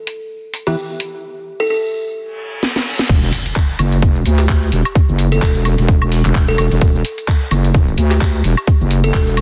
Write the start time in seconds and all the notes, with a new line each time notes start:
0.07 open hi-hat
0.54 open hi-hat
0.67 E3 B3 E4 G4 B4
1.00 open hi-hat
1.60 A4
1.70 A4
2.16 reverse cymbal
2.63 snare
2.76 snare
2.99 snare
3.09 E1, kick, closed hi-hat, crash, impact, shaker
3.23 shaker
3.33 closed hi-hat, open hi-hat, shaker
3.46 closed hi-hat, shaker
3.56 kick, snare, clap, closed hi-hat, shaker
3.69 snare, shaker
3.79 F#1, closed hi-hat, open hi-hat, high woodblock, shaker
3.92 closed hi-hat, shaker
4.02 kick, closed hi-hat, shaker
4.16 shaker
4.26 D2, closed hi-hat, open hi-hat, shaker
4.39 G4, clap, closed hi-hat, shaker
4.49 kick, snare, clap, closed hi-hat, shaker
4.63 shaker
4.72 E1, closed hi-hat, open hi-hat, shaker
4.85 closed hi-hat, high woodblock, shaker
4.95 kick, closed hi-hat, shaker
5.08 F#1, shaker
5.19 closed hi-hat, open hi-hat, shaker
5.32 A4, closed hi-hat, shaker
5.42 E1 A4, kick, snare, clap, closed hi-hat, shaker
5.55 open hi-hat, shaker
5.65 closed hi-hat, open hi-hat, high woodblock, shaker
5.78 E1, snare, closed hi-hat, shaker
5.88 kick, closed hi-hat, shaker
6.02 high woodblock, shaker
6.12 open hi-hat, shaker
6.25 E1, clap, closed hi-hat, shaker
6.35 kick, snare, clap, closed hi-hat
6.48 A4, closed hi-hat, shaker
6.58 E1 A4, snare, closed hi-hat, open hi-hat, high woodblock, shaker
6.71 E1, closed hi-hat, shaker
6.81 E1, kick, closed hi-hat, shaker
6.95 shaker
7.05 closed hi-hat, open hi-hat, shaker
7.18 closed hi-hat, shaker
7.28 kick, snare, clap, closed hi-hat, shaker
7.41 snare, shaker
7.51 F#1, closed hi-hat, open hi-hat, high woodblock, shaker
7.64 closed hi-hat, shaker
7.74 kick, closed hi-hat, shaker
7.88 shaker
7.98 D2, closed hi-hat, open hi-hat, shaker
8.11 G4, clap, closed hi-hat, shaker
8.21 kick, snare, clap, closed hi-hat, shaker
8.35 shaker
8.44 E1, closed hi-hat, open hi-hat, shaker
8.57 closed hi-hat, high woodblock, shaker
8.67 kick, closed hi-hat, shaker
8.81 F#1, shaker
8.91 closed hi-hat, open hi-hat, shaker
9.04 A4, closed hi-hat, shaker
9.14 E1 A4, kick, snare, clap, closed hi-hat, shaker
9.27 open hi-hat, shaker
9.37 closed hi-hat, open hi-hat, high woodblock, shaker